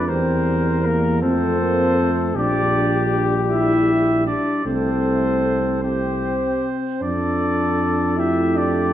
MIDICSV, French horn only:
0, 0, Header, 1, 2, 480
1, 0, Start_track
1, 0, Key_signature, -1, "major"
1, 0, Tempo, 760456
1, 55, Time_signature, 6, 3, 24, 8
1, 2455, Tempo, 781250
1, 5553, End_track
2, 0, Start_track
2, 0, Title_t, "French horn"
2, 0, Program_c, 0, 60
2, 60, Note_on_c, 0, 60, 54
2, 527, Note_off_c, 0, 60, 0
2, 530, Note_on_c, 0, 58, 57
2, 774, Note_on_c, 0, 60, 63
2, 784, Note_off_c, 0, 58, 0
2, 1488, Note_off_c, 0, 60, 0
2, 1491, Note_on_c, 0, 62, 72
2, 2025, Note_off_c, 0, 62, 0
2, 2207, Note_on_c, 0, 64, 72
2, 2665, Note_off_c, 0, 64, 0
2, 2687, Note_on_c, 0, 62, 58
2, 2923, Note_off_c, 0, 62, 0
2, 2926, Note_on_c, 0, 60, 52
2, 3637, Note_off_c, 0, 60, 0
2, 3647, Note_on_c, 0, 60, 56
2, 4374, Note_on_c, 0, 62, 57
2, 4383, Note_off_c, 0, 60, 0
2, 5091, Note_on_c, 0, 64, 65
2, 5100, Note_off_c, 0, 62, 0
2, 5330, Note_on_c, 0, 62, 60
2, 5339, Note_off_c, 0, 64, 0
2, 5553, Note_off_c, 0, 62, 0
2, 5553, End_track
0, 0, End_of_file